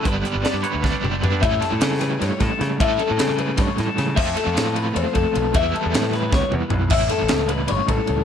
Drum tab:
CC |-------|-------|-------|x------|
RD |-------|xxxxxxx|xxxxxxx|-xxxxxx|
HH |xxxx---|-------|-------|-------|
SD |--o-o--|-oo-ooo|--o-ooo|--o----|
T2 |-----o-|-------|-------|-------|
FT |------o|-------|-------|-------|
BD |o---o--|o----o-|o---o--|o----o-|

CC |-------|x------|
RD |xxxx---|-xxxxxx|
HH |-------|-------|
SD |--ooo--|-oo----|
T2 |-----o-|-------|
FT |------o|-------|
BD |o---o--|o----o-|